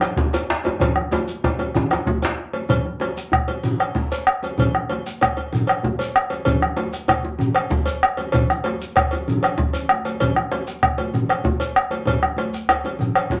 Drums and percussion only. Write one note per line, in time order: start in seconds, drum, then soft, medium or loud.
0.01 bombo rim medium
0.01 cowbell medium
0.01 djembe slap medium
0.01 shekere soft
0.16 bombo low loud
0.16 djembe slap medium
0.16 high conga medium
0.16 djembe tone medium
0.16 djembe bass medium
0.33 bombo rim soft
0.33 cowbell medium
0.33 djembe tone medium
0.33 high conga soft
0.33 djembe tone medium
0.33 shekere soft
0.50 djembe slap loud
0.50 high conga soft
0.64 cowbell medium
0.64 djembe slap medium
0.64 high conga medium
0.64 djembe tone medium
0.80 bombo low loud
0.80 cowbell medium
0.80 djembe tone loud
0.80 djembe bass medium
0.80 low conga medium
0.80 shekere medium
0.96 bombo rim medium
0.96 djembe tone medium
1.11 bombo rim soft
1.11 cowbell soft
1.11 djembe slap medium
1.11 high conga medium
1.11 djembe tone loud
1.11 shekere soft
1.28 djembe slap soft
1.28 shekere soft
1.44 bombo rim soft
1.44 bombo low loud
1.44 cowbell soft
1.44 djembe tone loud
1.44 djembe bass medium
1.59 bombo rim soft
1.59 cowbell soft
1.59 djembe slap medium
1.59 high conga medium
1.59 djembe tone medium
1.75 bombo rim soft
1.75 djembe tone loud
1.75 low conga medium
1.75 shekere medium
1.91 bombo rim medium
1.91 cowbell medium
1.91 high conga soft
1.91 djembe tone loud
2.07 bombo low loud
2.07 djembe slap medium
2.07 high conga medium
2.07 djembe bass medium
2.22 bombo rim soft
2.22 cowbell soft
2.22 djembe slap soft
2.22 djembe tone medium
2.22 shekere soft
2.25 djembe slap loud
2.38 djembe slap soft
2.53 cowbell soft
2.53 djembe slap medium
2.53 high conga medium
2.69 bombo low loud
2.69 cowbell medium
2.69 low conga medium
2.69 djembe bass medium
2.69 shekere medium
2.85 djembe slap soft
2.85 djembe tone medium
3.00 cowbell medium
3.00 djembe slap medium
3.00 high conga medium
3.17 bombo rim soft
3.17 djembe slap soft
3.17 shekere soft
3.32 bombo rim medium
3.32 bombo low medium
3.32 djembe bass medium
3.48 cowbell medium
3.48 djembe slap medium
3.48 high conga medium
3.48 djembe tone medium
3.63 bombo rim soft
3.63 low conga medium
3.63 shekere medium
3.80 bombo rim medium
3.80 cowbell soft
3.95 bombo rim soft
3.95 bombo low medium
3.95 djembe slap medium
3.95 high conga medium
3.95 djembe bass medium
4.11 cowbell soft
4.11 high conga soft
4.11 djembe tone medium
4.11 shekere soft
4.27 bombo rim loud
4.43 cowbell soft
4.43 djembe slap medium
4.43 high conga medium
4.43 shekere soft
4.58 bombo low loud
4.58 cowbell medium
4.58 low conga medium
4.58 djembe bass medium
4.58 shekere medium
4.75 bombo rim medium
4.75 djembe slap soft
4.75 djembe tone medium
4.89 cowbell medium
4.89 djembe slap medium
4.89 high conga medium
5.06 bombo rim soft
5.06 djembe slap soft
5.06 shekere medium
5.21 bombo rim loud
5.21 bombo low loud
5.21 cowbell soft
5.21 djembe bass medium
5.37 cowbell soft
5.37 djembe slap medium
5.37 djembe tone medium
5.53 bombo rim soft
5.53 low conga medium
5.53 shekere medium
5.67 bombo rim medium
5.67 cowbell medium
5.83 bombo rim soft
5.83 bombo low loud
5.83 djembe slap medium
5.83 high conga medium
5.83 djembe bass medium
5.99 cowbell medium
5.99 djembe tone medium
5.99 high conga soft
5.99 shekere medium
6.16 bombo rim loud
6.30 cowbell medium
6.30 djembe slap medium
6.30 high conga medium
6.30 shekere soft
6.45 bombo low loud
6.45 cowbell medium
6.45 low conga medium
6.45 djembe bass medium
6.45 shekere medium
6.61 bombo rim medium
6.61 djembe slap soft
6.61 djembe tone medium
6.76 cowbell medium
6.76 djembe slap medium
6.76 high conga medium
6.93 bombo rim soft
6.93 djembe slap soft
6.93 shekere soft
7.08 bombo rim loud
7.08 bombo low loud
7.08 cowbell medium
7.08 djembe bass medium
7.23 djembe slap medium
7.23 high conga medium
7.23 djembe tone medium
7.39 bombo rim soft
7.39 low conga medium
7.39 shekere medium
7.55 bombo rim medium
7.55 cowbell medium
7.70 bombo rim soft
7.70 bombo low loud
7.70 djembe slap medium
7.70 high conga medium
7.70 djembe bass medium
7.86 cowbell medium
7.86 djembe tone medium
7.86 high conga soft
7.86 shekere medium
8.03 bombo rim loud
8.17 cowbell medium
8.17 djembe slap medium
8.17 high conga medium
8.17 shekere soft
8.32 bombo rim soft
8.32 bombo low loud
8.32 cowbell medium
8.32 high conga soft
8.32 low conga medium
8.32 djembe bass medium
8.32 shekere medium
8.49 bombo rim medium
8.49 high conga soft
8.49 djembe tone medium
8.49 shekere soft
8.64 cowbell medium
8.64 djembe slap medium
8.64 high conga medium
8.81 djembe slap soft
8.81 high conga soft
8.81 shekere soft
8.96 bombo rim loud
8.96 bombo low loud
8.96 cowbell medium
8.96 djembe slap soft
8.96 djembe bass medium
9.11 cowbell medium
9.11 djembe slap medium
9.11 high conga medium
9.11 djembe tone medium
9.11 shekere soft
9.28 low conga medium
9.28 shekere medium
9.43 bombo rim medium
9.43 cowbell medium
9.43 djembe slap soft
9.43 shekere soft
9.58 bombo low loud
9.58 djembe slap medium
9.58 djembe bass medium
9.58 low conga soft
9.73 cowbell soft
9.73 djembe tone medium
9.73 low conga soft
9.73 shekere soft
9.89 bombo rim loud
9.89 djembe slap soft
9.89 high conga medium
10.05 cowbell soft
10.05 djembe slap medium
10.05 high conga medium
10.05 shekere soft
10.20 bombo low loud
10.20 cowbell medium
10.20 low conga medium
10.20 djembe bass medium
10.20 shekere medium
10.36 bombo rim medium
10.36 djembe slap soft
10.36 djembe tone medium
10.51 cowbell medium
10.51 djembe slap medium
10.51 high conga medium
10.67 bombo rim soft
10.67 djembe slap soft
10.67 shekere soft
10.83 bombo rim loud
10.83 bombo low loud
10.98 cowbell medium
10.98 djembe slap medium
10.98 djembe tone medium
10.98 high conga medium
11.14 bombo rim soft
11.14 low conga medium
11.14 shekere medium
11.29 bombo rim loud
11.29 cowbell medium
11.44 bombo rim soft
11.44 bombo low loud
11.44 djembe slap medium
11.44 high conga medium
11.44 djembe bass medium
11.59 cowbell medium
11.59 high conga soft
11.59 djembe tone medium
11.59 shekere soft
11.76 bombo rim loud
11.90 cowbell medium
11.90 djembe slap medium
11.90 high conga medium
11.90 shekere soft
12.05 bombo low loud
12.05 cowbell medium
12.05 low conga medium
12.05 djembe bass medium
12.05 shekere medium
12.23 bombo rim medium
12.23 djembe slap soft
12.23 djembe tone medium
12.37 cowbell medium
12.37 djembe slap medium
12.37 high conga medium
12.54 bombo rim soft
12.54 djembe slap soft
12.54 shekere soft
12.69 bombo rim loud
12.69 cowbell medium
12.69 djembe bass medium
12.84 cowbell soft
12.84 djembe slap medium
12.84 high conga medium
12.84 djembe tone medium
12.99 bombo rim soft
12.99 low conga medium
12.99 shekere medium
13.15 bombo rim medium
13.15 cowbell medium
13.30 bombo rim soft
13.30 bombo low loud
13.30 djembe slap medium
13.30 high conga medium
13.30 djembe bass medium